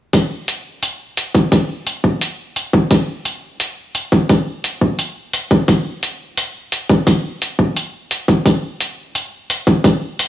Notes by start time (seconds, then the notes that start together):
0.13 kick, closed hi-hat
0.48 closed hi-hat
0.83 closed hi-hat
1.17 closed hi-hat
1.35 kick, closed hi-hat
1.52 kick, closed hi-hat
1.87 closed hi-hat
2.04 kick
2.21 closed hi-hat
2.56 closed hi-hat
2.73 kick
2.91 kick, closed hi-hat
3.25 closed hi-hat
3.60 closed hi-hat
3.95 closed hi-hat
4.12 kick, closed hi-hat
4.29 kick, closed hi-hat
4.64 closed hi-hat
4.81 kick
4.99 closed hi-hat
5.33 closed hi-hat
5.51 kick, closed hi-hat
5.68 kick, closed hi-hat
6.03 closed hi-hat
6.37 closed hi-hat
6.72 closed hi-hat
6.89 kick, closed hi-hat
7.07 kick, closed hi-hat
7.42 closed hi-hat
7.59 kick
7.77 closed hi-hat
8.11 closed hi-hat
8.28 kick, closed hi-hat
8.46 kick, closed hi-hat
8.81 closed hi-hat
9.15 closed hi-hat
9.50 closed hi-hat
9.67 kick, closed hi-hat
9.84 kick, closed hi-hat
10.19 closed hi-hat